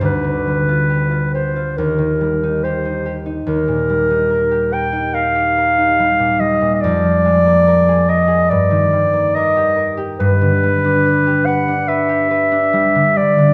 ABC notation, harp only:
X:1
M:4/4
L:1/16
Q:1/4=71
K:Eb
V:1 name="Harp"
[D,,G] D, G, F G F G F E,, E, G, E G E G E | E,, B,, G, E B G B E B G B E G, B,, G, B,, | F,, F, A, B, B A B A G,, E, G, B, B G B G | [K:G] G,, D, G, D B G B D B G B D G, D, G, D, |]